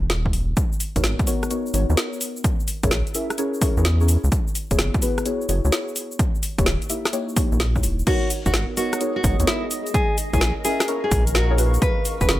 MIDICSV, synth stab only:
0, 0, Header, 1, 2, 480
1, 0, Start_track
1, 0, Key_signature, 5, "minor"
1, 0, Tempo, 468750
1, 583, Time_signature, 4, 2, 24, 8
1, 12696, End_track
2, 0, Start_track
2, 0, Title_t, "Synth stab"
2, 0, Program_c, 0, 62
2, 982, Note_on_c, 0, 63, 76
2, 982, Note_on_c, 0, 66, 73
2, 982, Note_on_c, 0, 73, 88
2, 983, Note_on_c, 0, 59, 81
2, 983, Note_on_c, 0, 70, 76
2, 1283, Note_off_c, 0, 59, 0
2, 1283, Note_off_c, 0, 63, 0
2, 1283, Note_off_c, 0, 66, 0
2, 1283, Note_off_c, 0, 70, 0
2, 1283, Note_off_c, 0, 73, 0
2, 1301, Note_on_c, 0, 59, 92
2, 1301, Note_on_c, 0, 66, 85
2, 1301, Note_on_c, 0, 70, 85
2, 1301, Note_on_c, 0, 73, 100
2, 1302, Note_on_c, 0, 63, 82
2, 1523, Note_off_c, 0, 59, 0
2, 1523, Note_off_c, 0, 63, 0
2, 1523, Note_off_c, 0, 66, 0
2, 1523, Note_off_c, 0, 70, 0
2, 1523, Note_off_c, 0, 73, 0
2, 1541, Note_on_c, 0, 59, 78
2, 1541, Note_on_c, 0, 63, 72
2, 1541, Note_on_c, 0, 66, 76
2, 1541, Note_on_c, 0, 70, 74
2, 1541, Note_on_c, 0, 73, 86
2, 1750, Note_off_c, 0, 59, 0
2, 1750, Note_off_c, 0, 63, 0
2, 1750, Note_off_c, 0, 66, 0
2, 1750, Note_off_c, 0, 70, 0
2, 1750, Note_off_c, 0, 73, 0
2, 1781, Note_on_c, 0, 59, 90
2, 1781, Note_on_c, 0, 63, 80
2, 1781, Note_on_c, 0, 66, 79
2, 1781, Note_on_c, 0, 70, 79
2, 1781, Note_on_c, 0, 73, 100
2, 1904, Note_off_c, 0, 59, 0
2, 1904, Note_off_c, 0, 63, 0
2, 1904, Note_off_c, 0, 66, 0
2, 1904, Note_off_c, 0, 70, 0
2, 1904, Note_off_c, 0, 73, 0
2, 1942, Note_on_c, 0, 59, 85
2, 1942, Note_on_c, 0, 63, 77
2, 1942, Note_on_c, 0, 66, 78
2, 1942, Note_on_c, 0, 70, 80
2, 1942, Note_on_c, 0, 73, 98
2, 2492, Note_off_c, 0, 59, 0
2, 2492, Note_off_c, 0, 63, 0
2, 2492, Note_off_c, 0, 66, 0
2, 2492, Note_off_c, 0, 70, 0
2, 2492, Note_off_c, 0, 73, 0
2, 2903, Note_on_c, 0, 61, 96
2, 2903, Note_on_c, 0, 64, 93
2, 2903, Note_on_c, 0, 68, 93
2, 2903, Note_on_c, 0, 70, 92
2, 2903, Note_on_c, 0, 73, 110
2, 2982, Note_off_c, 0, 68, 0
2, 2983, Note_off_c, 0, 61, 0
2, 2983, Note_off_c, 0, 64, 0
2, 2983, Note_off_c, 0, 70, 0
2, 2983, Note_off_c, 0, 73, 0
2, 3223, Note_on_c, 0, 61, 80
2, 3223, Note_on_c, 0, 64, 72
2, 3223, Note_on_c, 0, 68, 70
2, 3223, Note_on_c, 0, 70, 70
2, 3223, Note_on_c, 0, 76, 85
2, 3383, Note_off_c, 0, 64, 0
2, 3383, Note_off_c, 0, 68, 0
2, 3383, Note_off_c, 0, 76, 0
2, 3384, Note_off_c, 0, 61, 0
2, 3384, Note_off_c, 0, 70, 0
2, 3462, Note_on_c, 0, 70, 86
2, 3462, Note_on_c, 0, 73, 107
2, 3463, Note_on_c, 0, 61, 93
2, 3463, Note_on_c, 0, 64, 83
2, 3463, Note_on_c, 0, 68, 89
2, 3683, Note_off_c, 0, 70, 0
2, 3683, Note_off_c, 0, 73, 0
2, 3684, Note_off_c, 0, 61, 0
2, 3684, Note_off_c, 0, 64, 0
2, 3684, Note_off_c, 0, 68, 0
2, 3703, Note_on_c, 0, 61, 98
2, 3703, Note_on_c, 0, 64, 84
2, 3703, Note_on_c, 0, 68, 90
2, 3703, Note_on_c, 0, 70, 86
2, 3703, Note_on_c, 0, 73, 104
2, 3839, Note_off_c, 0, 61, 0
2, 3839, Note_off_c, 0, 64, 0
2, 3839, Note_off_c, 0, 68, 0
2, 3839, Note_off_c, 0, 70, 0
2, 3839, Note_off_c, 0, 73, 0
2, 3862, Note_on_c, 0, 70, 78
2, 3863, Note_on_c, 0, 61, 84
2, 3863, Note_on_c, 0, 64, 78
2, 3863, Note_on_c, 0, 68, 79
2, 3863, Note_on_c, 0, 73, 93
2, 3942, Note_off_c, 0, 61, 0
2, 3942, Note_off_c, 0, 64, 0
2, 3942, Note_off_c, 0, 68, 0
2, 3942, Note_off_c, 0, 70, 0
2, 3942, Note_off_c, 0, 73, 0
2, 4103, Note_on_c, 0, 61, 81
2, 4103, Note_on_c, 0, 64, 72
2, 4103, Note_on_c, 0, 68, 70
2, 4103, Note_on_c, 0, 70, 72
2, 4103, Note_on_c, 0, 73, 86
2, 4279, Note_off_c, 0, 61, 0
2, 4279, Note_off_c, 0, 64, 0
2, 4279, Note_off_c, 0, 68, 0
2, 4279, Note_off_c, 0, 70, 0
2, 4279, Note_off_c, 0, 73, 0
2, 4823, Note_on_c, 0, 66, 75
2, 4824, Note_on_c, 0, 59, 84
2, 4824, Note_on_c, 0, 64, 74
2, 4824, Note_on_c, 0, 68, 77
2, 4824, Note_on_c, 0, 73, 91
2, 5123, Note_off_c, 0, 66, 0
2, 5124, Note_off_c, 0, 59, 0
2, 5124, Note_off_c, 0, 64, 0
2, 5124, Note_off_c, 0, 68, 0
2, 5124, Note_off_c, 0, 73, 0
2, 5142, Note_on_c, 0, 59, 90
2, 5142, Note_on_c, 0, 64, 82
2, 5142, Note_on_c, 0, 66, 85
2, 5142, Note_on_c, 0, 68, 83
2, 5142, Note_on_c, 0, 71, 98
2, 5363, Note_off_c, 0, 59, 0
2, 5363, Note_off_c, 0, 64, 0
2, 5363, Note_off_c, 0, 66, 0
2, 5363, Note_off_c, 0, 68, 0
2, 5363, Note_off_c, 0, 71, 0
2, 5382, Note_on_c, 0, 59, 81
2, 5382, Note_on_c, 0, 64, 71
2, 5382, Note_on_c, 0, 66, 72
2, 5382, Note_on_c, 0, 68, 73
2, 5383, Note_on_c, 0, 73, 84
2, 5591, Note_off_c, 0, 59, 0
2, 5591, Note_off_c, 0, 64, 0
2, 5591, Note_off_c, 0, 66, 0
2, 5591, Note_off_c, 0, 68, 0
2, 5591, Note_off_c, 0, 73, 0
2, 5622, Note_on_c, 0, 59, 88
2, 5622, Note_on_c, 0, 64, 80
2, 5622, Note_on_c, 0, 66, 79
2, 5622, Note_on_c, 0, 68, 78
2, 5622, Note_on_c, 0, 73, 96
2, 5744, Note_off_c, 0, 59, 0
2, 5744, Note_off_c, 0, 64, 0
2, 5744, Note_off_c, 0, 66, 0
2, 5744, Note_off_c, 0, 68, 0
2, 5745, Note_off_c, 0, 73, 0
2, 5783, Note_on_c, 0, 59, 84
2, 5783, Note_on_c, 0, 64, 82
2, 5783, Note_on_c, 0, 66, 80
2, 5783, Note_on_c, 0, 68, 77
2, 5783, Note_on_c, 0, 73, 98
2, 6333, Note_off_c, 0, 59, 0
2, 6333, Note_off_c, 0, 64, 0
2, 6333, Note_off_c, 0, 66, 0
2, 6333, Note_off_c, 0, 68, 0
2, 6333, Note_off_c, 0, 73, 0
2, 6742, Note_on_c, 0, 64, 89
2, 6743, Note_on_c, 0, 58, 101
2, 6743, Note_on_c, 0, 63, 90
2, 6743, Note_on_c, 0, 67, 91
2, 6743, Note_on_c, 0, 73, 110
2, 6822, Note_off_c, 0, 58, 0
2, 6822, Note_off_c, 0, 63, 0
2, 6822, Note_off_c, 0, 64, 0
2, 6822, Note_off_c, 0, 67, 0
2, 6822, Note_off_c, 0, 73, 0
2, 7062, Note_on_c, 0, 58, 79
2, 7062, Note_on_c, 0, 63, 72
2, 7062, Note_on_c, 0, 64, 73
2, 7062, Note_on_c, 0, 67, 69
2, 7063, Note_on_c, 0, 76, 86
2, 7223, Note_off_c, 0, 58, 0
2, 7223, Note_off_c, 0, 63, 0
2, 7223, Note_off_c, 0, 64, 0
2, 7223, Note_off_c, 0, 67, 0
2, 7223, Note_off_c, 0, 76, 0
2, 7301, Note_on_c, 0, 58, 99
2, 7301, Note_on_c, 0, 63, 89
2, 7301, Note_on_c, 0, 64, 89
2, 7301, Note_on_c, 0, 67, 89
2, 7301, Note_on_c, 0, 73, 106
2, 7523, Note_off_c, 0, 58, 0
2, 7523, Note_off_c, 0, 63, 0
2, 7523, Note_off_c, 0, 64, 0
2, 7523, Note_off_c, 0, 67, 0
2, 7523, Note_off_c, 0, 73, 0
2, 7541, Note_on_c, 0, 73, 104
2, 7542, Note_on_c, 0, 58, 97
2, 7542, Note_on_c, 0, 63, 89
2, 7542, Note_on_c, 0, 64, 90
2, 7542, Note_on_c, 0, 67, 87
2, 7679, Note_off_c, 0, 58, 0
2, 7679, Note_off_c, 0, 63, 0
2, 7679, Note_off_c, 0, 64, 0
2, 7679, Note_off_c, 0, 67, 0
2, 7679, Note_off_c, 0, 73, 0
2, 7703, Note_on_c, 0, 58, 86
2, 7703, Note_on_c, 0, 63, 79
2, 7703, Note_on_c, 0, 64, 78
2, 7703, Note_on_c, 0, 67, 78
2, 7703, Note_on_c, 0, 73, 94
2, 7782, Note_off_c, 0, 58, 0
2, 7782, Note_off_c, 0, 63, 0
2, 7782, Note_off_c, 0, 64, 0
2, 7782, Note_off_c, 0, 67, 0
2, 7782, Note_off_c, 0, 73, 0
2, 7943, Note_on_c, 0, 58, 78
2, 7943, Note_on_c, 0, 63, 73
2, 7943, Note_on_c, 0, 64, 70
2, 7943, Note_on_c, 0, 67, 73
2, 7943, Note_on_c, 0, 73, 88
2, 8118, Note_off_c, 0, 67, 0
2, 8118, Note_off_c, 0, 73, 0
2, 8119, Note_off_c, 0, 58, 0
2, 8119, Note_off_c, 0, 63, 0
2, 8119, Note_off_c, 0, 64, 0
2, 8261, Note_on_c, 0, 59, 103
2, 8261, Note_on_c, 0, 63, 95
2, 8261, Note_on_c, 0, 66, 90
2, 8261, Note_on_c, 0, 70, 94
2, 8261, Note_on_c, 0, 73, 115
2, 8598, Note_off_c, 0, 59, 0
2, 8598, Note_off_c, 0, 63, 0
2, 8598, Note_off_c, 0, 66, 0
2, 8598, Note_off_c, 0, 70, 0
2, 8598, Note_off_c, 0, 73, 0
2, 8662, Note_on_c, 0, 59, 88
2, 8662, Note_on_c, 0, 63, 78
2, 8662, Note_on_c, 0, 66, 76
2, 8662, Note_on_c, 0, 70, 79
2, 8662, Note_on_c, 0, 73, 91
2, 8963, Note_off_c, 0, 59, 0
2, 8963, Note_off_c, 0, 63, 0
2, 8963, Note_off_c, 0, 66, 0
2, 8963, Note_off_c, 0, 70, 0
2, 8963, Note_off_c, 0, 73, 0
2, 8982, Note_on_c, 0, 59, 91
2, 8982, Note_on_c, 0, 63, 85
2, 8982, Note_on_c, 0, 66, 86
2, 8982, Note_on_c, 0, 70, 84
2, 8982, Note_on_c, 0, 73, 101
2, 9203, Note_off_c, 0, 59, 0
2, 9203, Note_off_c, 0, 63, 0
2, 9203, Note_off_c, 0, 66, 0
2, 9203, Note_off_c, 0, 70, 0
2, 9203, Note_off_c, 0, 73, 0
2, 9222, Note_on_c, 0, 59, 78
2, 9222, Note_on_c, 0, 63, 76
2, 9222, Note_on_c, 0, 66, 74
2, 9222, Note_on_c, 0, 70, 75
2, 9222, Note_on_c, 0, 73, 87
2, 9430, Note_off_c, 0, 59, 0
2, 9430, Note_off_c, 0, 63, 0
2, 9430, Note_off_c, 0, 66, 0
2, 9430, Note_off_c, 0, 70, 0
2, 9430, Note_off_c, 0, 73, 0
2, 9461, Note_on_c, 0, 66, 84
2, 9461, Note_on_c, 0, 70, 79
2, 9462, Note_on_c, 0, 59, 88
2, 9462, Note_on_c, 0, 63, 83
2, 9462, Note_on_c, 0, 73, 95
2, 9584, Note_off_c, 0, 59, 0
2, 9584, Note_off_c, 0, 63, 0
2, 9584, Note_off_c, 0, 66, 0
2, 9584, Note_off_c, 0, 70, 0
2, 9584, Note_off_c, 0, 73, 0
2, 9622, Note_on_c, 0, 59, 86
2, 9622, Note_on_c, 0, 63, 77
2, 9622, Note_on_c, 0, 66, 79
2, 9622, Note_on_c, 0, 70, 78
2, 9622, Note_on_c, 0, 73, 94
2, 10172, Note_off_c, 0, 59, 0
2, 10172, Note_off_c, 0, 66, 0
2, 10172, Note_off_c, 0, 70, 0
2, 10172, Note_off_c, 0, 73, 0
2, 10173, Note_off_c, 0, 63, 0
2, 10582, Note_on_c, 0, 61, 97
2, 10582, Note_on_c, 0, 64, 93
2, 10582, Note_on_c, 0, 68, 92
2, 10582, Note_on_c, 0, 70, 92
2, 10582, Note_on_c, 0, 73, 112
2, 10662, Note_off_c, 0, 61, 0
2, 10662, Note_off_c, 0, 64, 0
2, 10662, Note_off_c, 0, 68, 0
2, 10662, Note_off_c, 0, 70, 0
2, 10662, Note_off_c, 0, 73, 0
2, 10902, Note_on_c, 0, 61, 78
2, 10902, Note_on_c, 0, 64, 72
2, 10902, Note_on_c, 0, 68, 69
2, 10902, Note_on_c, 0, 70, 73
2, 10902, Note_on_c, 0, 76, 86
2, 11063, Note_off_c, 0, 61, 0
2, 11063, Note_off_c, 0, 64, 0
2, 11063, Note_off_c, 0, 68, 0
2, 11063, Note_off_c, 0, 70, 0
2, 11063, Note_off_c, 0, 76, 0
2, 11142, Note_on_c, 0, 68, 89
2, 11142, Note_on_c, 0, 70, 88
2, 11142, Note_on_c, 0, 73, 108
2, 11143, Note_on_c, 0, 61, 92
2, 11143, Note_on_c, 0, 64, 88
2, 11363, Note_off_c, 0, 61, 0
2, 11363, Note_off_c, 0, 64, 0
2, 11363, Note_off_c, 0, 68, 0
2, 11363, Note_off_c, 0, 70, 0
2, 11363, Note_off_c, 0, 73, 0
2, 11782, Note_on_c, 0, 61, 99
2, 11782, Note_on_c, 0, 64, 87
2, 11782, Note_on_c, 0, 68, 87
2, 11782, Note_on_c, 0, 70, 89
2, 11782, Note_on_c, 0, 73, 113
2, 11850, Note_off_c, 0, 61, 0
2, 11850, Note_off_c, 0, 64, 0
2, 11850, Note_off_c, 0, 68, 0
2, 11850, Note_off_c, 0, 70, 0
2, 11850, Note_off_c, 0, 73, 0
2, 11861, Note_on_c, 0, 61, 81
2, 11861, Note_on_c, 0, 64, 76
2, 11861, Note_on_c, 0, 66, 72
2, 11861, Note_on_c, 0, 71, 88
2, 11862, Note_on_c, 0, 68, 74
2, 12464, Note_off_c, 0, 61, 0
2, 12464, Note_off_c, 0, 64, 0
2, 12464, Note_off_c, 0, 66, 0
2, 12464, Note_off_c, 0, 68, 0
2, 12464, Note_off_c, 0, 71, 0
2, 12502, Note_on_c, 0, 68, 79
2, 12503, Note_on_c, 0, 61, 86
2, 12503, Note_on_c, 0, 64, 76
2, 12503, Note_on_c, 0, 66, 77
2, 12503, Note_on_c, 0, 71, 94
2, 12696, Note_off_c, 0, 61, 0
2, 12696, Note_off_c, 0, 64, 0
2, 12696, Note_off_c, 0, 66, 0
2, 12696, Note_off_c, 0, 68, 0
2, 12696, Note_off_c, 0, 71, 0
2, 12696, End_track
0, 0, End_of_file